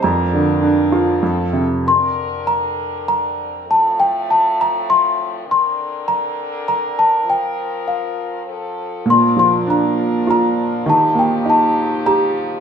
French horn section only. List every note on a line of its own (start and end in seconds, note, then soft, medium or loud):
0.03 1.66 F3 medium
0.03 1.23 D4 medium
0.03 1.22 A#4 medium
1.23 1.66 C4 medium
1.23 1.66 A4 medium
1.83 3.63 D3 medium
1.83 9.01 C4 medium
1.83 3.64 A#4 medium
3.67 5.44 A2 medium
3.67 5.43 F3 medium
3.67 5.43 A3 medium
5.45 7.23 D3 medium
5.45 8.42 A#4 medium
7.24 8.44 F3 medium
8.45 12.60 F3 medium
8.45 9.06 A4 medium
9.06 10.85 D4 medium
9.06 10.85 A#4 medium
10.87 12.60 D#4 medium
10.87 12.60 G4 medium